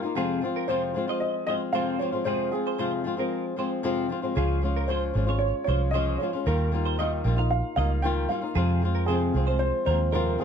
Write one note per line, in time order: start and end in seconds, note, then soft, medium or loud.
0.03 0.16 A#3 soft
0.03 0.17 D#4 medium
0.03 0.16 F4 medium
0.15 0.42 F2 medium
0.15 0.42 C3 medium
0.15 0.40 F3 medium
0.15 0.42 G#3 medium
0.15 0.43 C4 medium
0.15 0.43 F4 medium
0.15 0.41 G#4 medium
0.41 0.67 F3 medium
0.41 0.68 G#3 medium
0.41 0.69 C4 medium
0.41 0.69 F4 medium
0.56 0.68 A#4 medium
0.68 0.95 F2 medium
0.68 0.95 C3 medium
0.68 0.93 F3 medium
0.68 0.94 G#3 medium
0.68 0.95 C4 medium
0.68 0.96 F4 medium
0.68 1.23 C5 medium
0.68 0.82 C5 medium
0.94 1.08 F3 soft
0.94 1.09 G#3 medium
0.94 1.08 C4 medium
0.94 1.06 F4 medium
1.07 1.45 F3 soft
1.07 1.47 G#3 soft
1.07 1.48 C4 soft
1.07 1.47 F4 soft
1.07 1.34 D#5 medium
1.20 1.45 D#5 medium
1.47 1.73 F3 soft
1.47 1.73 G#3 medium
1.47 1.74 C4 medium
1.47 1.74 F4 medium
1.47 1.61 C5 medium
1.47 1.53 D#5 medium
1.73 2.00 F2 medium
1.73 2.00 C3 medium
1.73 1.98 F3 medium
1.73 1.99 G#3 medium
1.73 2.00 C4 medium
1.73 2.01 F4 medium
1.73 2.11 C5 medium
1.73 1.98 F5 medium
1.99 2.13 F3 medium
1.99 2.13 G#3 soft
1.99 2.12 C4 medium
1.99 2.11 F4 medium
1.99 2.24 C#5 medium
2.12 2.24 F3 soft
2.12 2.25 G#3 soft
2.12 2.26 C4 soft
2.12 2.25 F4 soft
2.24 2.52 F2 medium
2.24 2.52 C3 medium
2.24 2.50 F3 medium
2.24 2.51 G#3 medium
2.24 2.53 C4 medium
2.24 2.53 F4 medium
2.24 2.52 G#4 medium
2.24 2.50 C5 medium
2.52 2.78 F3 soft
2.52 2.78 G#3 medium
2.52 2.79 C4 soft
2.52 2.79 F4 medium
2.52 4.06 G#4 medium
2.67 2.78 C5 medium
2.78 3.05 F2 medium
2.78 3.05 C3 medium
2.78 3.03 F3 medium
2.78 3.04 G#3 medium
2.78 3.05 C4 medium
2.78 3.06 F4 medium
2.78 2.92 C5 medium
3.04 3.18 F3 medium
3.04 3.18 G#3 medium
3.04 3.17 C4 medium
3.04 3.16 F4 medium
3.17 3.55 F3 soft
3.17 3.56 G#3 soft
3.17 3.57 C4 soft
3.17 3.57 F4 medium
3.17 3.44 A#4 medium
3.56 3.83 F3 medium
3.56 3.83 G#3 medium
3.56 3.84 C4 medium
3.56 3.84 F4 medium
3.56 3.71 C5 medium
3.83 4.10 F2 medium
3.83 4.10 C3 medium
3.83 4.08 F3 medium
3.83 4.09 G#3 medium
3.83 4.10 C4 medium
3.83 4.11 F4 medium
4.09 4.23 F3 medium
4.09 4.23 G#3 medium
4.09 4.22 C4 medium
4.09 4.21 F4 medium
4.22 4.35 F3 soft
4.22 4.35 G#3 soft
4.22 4.36 C4 soft
4.22 4.36 F4 soft
4.35 5.11 C#2 medium
4.35 4.62 C#3 medium
4.35 4.60 F3 medium
4.35 4.62 G#3 medium
4.35 4.63 C#4 medium
4.35 4.63 F4 medium
4.35 4.62 G#4 medium
4.62 4.88 F3 medium
4.62 4.88 G#3 medium
4.62 4.89 C#4 medium
4.62 4.89 F4 medium
4.76 4.89 A#4 medium
4.88 5.15 C#3 medium
4.88 5.13 F3 medium
4.88 5.14 G#3 medium
4.88 5.15 C#4 medium
4.88 5.16 F4 medium
4.88 5.42 C5 medium
4.88 5.02 C5 medium
5.14 5.51 G#1 medium
5.14 5.28 F3 medium
5.14 5.28 G#3 medium
5.14 5.27 C#4 medium
5.14 5.26 F4 medium
5.27 5.67 G#3 soft
5.27 5.68 C#4 soft
5.27 5.67 F4 soft
5.27 5.54 C#5 medium
5.39 5.63 C#5 medium
5.64 6.16 C2 medium
5.64 5.93 F3 soft
5.64 5.93 G#3 medium
5.64 5.93 C#5 medium
5.69 5.94 C#4 medium
5.69 5.94 F4 medium
5.69 5.81 C5 medium
5.91 6.20 C#3 medium
5.91 6.19 F3 medium
5.91 6.20 G#3 medium
5.91 6.21 C#4 medium
5.91 6.31 C5 medium
5.91 6.19 D#5 medium
5.95 6.21 F4 medium
6.18 6.33 F3 soft
6.18 6.34 G#3 medium
6.18 6.44 C#5 medium
6.22 6.34 C#4 medium
6.22 6.32 F4 medium
6.33 6.47 G#3 soft
6.33 6.47 C#4 soft
6.33 6.46 F4 medium
6.46 7.21 D#2 medium
6.46 6.72 D#3 medium
6.46 6.70 G3 medium
6.46 6.71 A#3 medium
6.46 6.73 D#4 medium
6.46 6.73 F4 medium
6.46 6.72 A#4 medium
6.71 6.98 G3 medium
6.71 6.98 A#3 medium
6.71 6.99 D#4 medium
6.71 6.99 F4 medium
6.86 6.98 C5 medium
6.98 7.25 D#3 medium
6.98 7.23 G3 medium
6.98 7.24 A#3 medium
6.98 7.26 D#4 medium
6.98 7.26 F4 medium
6.98 7.47 D#5 medium
6.98 7.11 D#5 medium
7.24 7.61 A#1 medium
7.24 7.38 G3 medium
7.24 7.38 A#3 medium
7.24 7.38 D#4 medium
7.24 7.36 F4 medium
7.37 7.76 A#3 soft
7.37 7.77 D#4 soft
7.37 7.77 F4 medium
7.37 7.63 F5 medium
7.51 7.75 F5 medium
7.76 8.26 C#2 medium
7.76 8.02 G3 medium
7.76 8.03 A#3 medium
7.76 8.04 D#4 medium
7.76 8.04 F4 medium
7.76 7.90 D#5 medium
7.76 8.04 F5 medium
8.02 8.29 D#3 medium
8.02 8.27 G3 medium
8.02 8.29 A#3 medium
8.02 8.29 D#4 medium
8.02 8.31 F4 medium
8.02 8.30 G5 medium
8.29 8.42 G3 soft
8.29 8.43 A#3 medium
8.29 8.42 D#4 medium
8.29 8.40 F4 medium
8.29 8.54 F5 medium
8.42 8.56 A#3 soft
8.42 8.56 D#4 soft
8.42 8.55 F4 soft
8.55 8.82 F2 medium
8.55 9.30 F2 medium
8.55 8.82 C3 medium
8.55 8.80 F3 medium
8.55 8.82 G#3 medium
8.55 8.83 C4 medium
8.55 8.83 F4 medium
8.55 8.81 G#4 medium
8.81 9.08 F3 medium
8.81 9.08 G#3 medium
8.81 9.09 C4 medium
8.81 9.09 F4 medium
8.95 9.07 A#4 medium
9.06 9.34 F2 medium
9.06 9.35 C3 medium
9.06 9.33 F3 medium
9.06 9.34 G#3 medium
9.06 9.35 C4 medium
9.06 9.35 F4 medium
9.06 9.61 G#4 medium
9.06 9.21 C5 medium
9.34 9.70 C2 medium
9.34 9.47 F3 soft
9.34 9.48 G#3 medium
9.34 9.48 C4 medium
9.34 9.47 F4 medium
9.47 9.86 F3 soft
9.47 9.87 G#3 soft
9.47 9.88 C4 soft
9.47 9.87 F4 soft
9.47 9.72 C5 medium
9.59 9.84 C5 medium
9.86 10.35 D#2 medium
9.86 10.13 F3 medium
9.86 10.14 G#3 medium
9.86 10.14 C4 medium
9.86 9.99 A#4 medium
9.86 10.13 C5 medium
9.90 10.14 F4 medium
10.12 10.39 F2 medium
10.12 10.40 C3 medium
10.12 10.37 F3 medium
10.12 10.38 G#3 medium
10.12 10.39 C4 medium
10.12 10.40 F4 medium
10.12 10.45 A#4 medium
10.12 10.37 A#4 medium
10.38 10.45 F3 medium
10.38 10.45 G#3 medium
10.38 10.45 C4 medium
10.38 10.45 F4 medium
10.38 10.45 G#4 medium